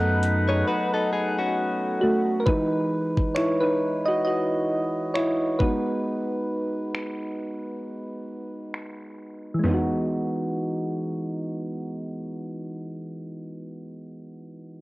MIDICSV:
0, 0, Header, 1, 6, 480
1, 0, Start_track
1, 0, Key_signature, 4, "major"
1, 0, Tempo, 895522
1, 1322, Time_signature, 4, 2, 24, 8
1, 7939, End_track
2, 0, Start_track
2, 0, Title_t, "Brass ensemble"
2, 0, Program_c, 0, 61
2, 0, Note_on_c, 0, 63, 82
2, 0, Note_on_c, 0, 71, 75
2, 0, Note_on_c, 0, 78, 76
2, 1304, Note_off_c, 0, 63, 0
2, 1305, Note_off_c, 0, 71, 0
2, 1305, Note_off_c, 0, 78, 0
2, 7939, End_track
3, 0, Start_track
3, 0, Title_t, "Clean electric guitar"
3, 0, Program_c, 1, 27
3, 260, Note_on_c, 1, 73, 74
3, 264, Note_on_c, 1, 68, 65
3, 356, Note_off_c, 1, 73, 0
3, 358, Note_off_c, 1, 68, 0
3, 361, Note_on_c, 1, 71, 89
3, 364, Note_on_c, 1, 66, 74
3, 493, Note_off_c, 1, 71, 0
3, 495, Note_off_c, 1, 66, 0
3, 501, Note_on_c, 1, 69, 85
3, 504, Note_on_c, 1, 63, 72
3, 597, Note_off_c, 1, 69, 0
3, 598, Note_off_c, 1, 63, 0
3, 603, Note_on_c, 1, 68, 86
3, 606, Note_on_c, 1, 63, 68
3, 734, Note_off_c, 1, 68, 0
3, 736, Note_off_c, 1, 63, 0
3, 742, Note_on_c, 1, 66, 80
3, 744, Note_on_c, 1, 61, 67
3, 1301, Note_off_c, 1, 66, 0
3, 1302, Note_off_c, 1, 61, 0
3, 7939, End_track
4, 0, Start_track
4, 0, Title_t, "Synth keys"
4, 0, Program_c, 2, 88
4, 0, Control_c, 2, 64, 127
4, 0, Note_on_c, 2, 54, 83
4, 0, Note_on_c, 2, 57, 78
4, 0, Note_on_c, 2, 59, 76
4, 0, Note_on_c, 2, 63, 72
4, 0, Note_on_c, 2, 69, 92
4, 1077, Note_on_c, 2, 66, 88
4, 1083, Note_off_c, 2, 57, 0
4, 1089, Note_on_c, 2, 57, 68
4, 1273, Note_off_c, 2, 66, 0
4, 1280, Note_off_c, 2, 57, 0
4, 1286, Note_on_c, 2, 70, 73
4, 1289, Note_off_c, 2, 54, 0
4, 1301, Note_off_c, 2, 59, 0
4, 1308, Note_off_c, 2, 63, 0
4, 1315, Note_off_c, 2, 69, 0
4, 1317, Note_on_c, 2, 71, 101
4, 1320, Note_off_c, 2, 70, 0
4, 1323, Note_on_c, 2, 52, 56
4, 1326, Note_on_c, 2, 56, 51
4, 1329, Control_c, 2, 64, 0
4, 1329, Note_on_c, 2, 63, 63
4, 1330, Note_off_c, 2, 63, 0
4, 1330, Note_on_c, 2, 63, 81
4, 1411, Control_c, 2, 64, 127
4, 1656, Note_off_c, 2, 52, 0
4, 1658, Note_off_c, 2, 56, 0
4, 1785, Note_off_c, 2, 63, 0
4, 1795, Note_on_c, 2, 73, 89
4, 1809, Note_on_c, 2, 64, 69
4, 1814, Note_off_c, 2, 71, 0
4, 1933, Note_on_c, 2, 71, 86
4, 1935, Note_off_c, 2, 64, 0
4, 1942, Note_off_c, 2, 73, 0
4, 1947, Note_on_c, 2, 63, 65
4, 2167, Note_off_c, 2, 63, 0
4, 2174, Note_on_c, 2, 75, 96
4, 2184, Note_off_c, 2, 71, 0
4, 2187, Note_on_c, 2, 66, 71
4, 2270, Note_off_c, 2, 75, 0
4, 2276, Note_on_c, 2, 75, 105
4, 2278, Note_off_c, 2, 66, 0
4, 2289, Note_on_c, 2, 66, 81
4, 2737, Note_off_c, 2, 75, 0
4, 2744, Note_off_c, 2, 66, 0
4, 2756, Note_on_c, 2, 73, 90
4, 2770, Note_on_c, 2, 64, 73
4, 2989, Note_off_c, 2, 64, 0
4, 2996, Note_on_c, 2, 71, 89
4, 3002, Note_on_c, 2, 56, 56
4, 3006, Note_off_c, 2, 73, 0
4, 3006, Note_on_c, 2, 59, 48
4, 3009, Note_on_c, 2, 66, 59
4, 3010, Control_c, 2, 64, 0
4, 3010, Note_on_c, 2, 63, 70
4, 3099, Control_c, 2, 64, 127
4, 4418, Note_off_c, 2, 71, 0
4, 4425, Note_off_c, 2, 63, 0
4, 4900, Note_off_c, 2, 56, 0
4, 4902, Note_off_c, 2, 59, 0
4, 4904, Note_off_c, 2, 66, 0
4, 5115, Note_on_c, 2, 52, 76
4, 5141, Note_on_c, 2, 56, 69
4, 5166, Note_on_c, 2, 59, 71
4, 5169, Control_c, 2, 64, 0
4, 5192, Note_on_c, 2, 63, 72
4, 5218, Note_on_c, 2, 66, 88
4, 5273, Control_c, 2, 64, 127
4, 6758, Note_off_c, 2, 52, 0
4, 6784, Note_off_c, 2, 56, 0
4, 6809, Note_off_c, 2, 59, 0
4, 6836, Note_off_c, 2, 63, 0
4, 6862, Note_off_c, 2, 66, 0
4, 7939, End_track
5, 0, Start_track
5, 0, Title_t, "808-style bass"
5, 0, Program_c, 3, 38
5, 0, Note_on_c, 3, 42, 102
5, 341, Note_off_c, 3, 42, 0
5, 7939, End_track
6, 0, Start_track
6, 0, Title_t, "Drums"
6, 122, Note_on_c, 9, 42, 78
6, 175, Note_off_c, 9, 42, 0
6, 1322, Note_on_c, 9, 36, 116
6, 1376, Note_off_c, 9, 36, 0
6, 1701, Note_on_c, 9, 36, 93
6, 1755, Note_off_c, 9, 36, 0
6, 1802, Note_on_c, 9, 26, 113
6, 1856, Note_off_c, 9, 26, 0
6, 2763, Note_on_c, 9, 26, 106
6, 2817, Note_off_c, 9, 26, 0
6, 3003, Note_on_c, 9, 36, 102
6, 3056, Note_off_c, 9, 36, 0
6, 3723, Note_on_c, 9, 26, 109
6, 3777, Note_off_c, 9, 26, 0
6, 4686, Note_on_c, 9, 26, 99
6, 4739, Note_off_c, 9, 26, 0
6, 5164, Note_on_c, 9, 43, 91
6, 5165, Note_on_c, 9, 38, 90
6, 5218, Note_off_c, 9, 38, 0
6, 5218, Note_off_c, 9, 43, 0
6, 7939, End_track
0, 0, End_of_file